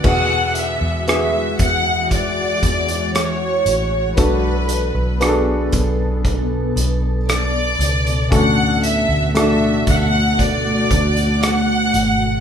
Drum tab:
CC |x---------------|----------------|----------------|
HH |--x-x-x-x-xxx-x-|x-x-x-x-x-x-x-xx|x-x-x-x-x-xxx-x-|
SD |----r-------r---|----r-------r---|----r-------r---|
BD |o-----o-o-o-----|o-----o-o-------|o-----o-o-o-----|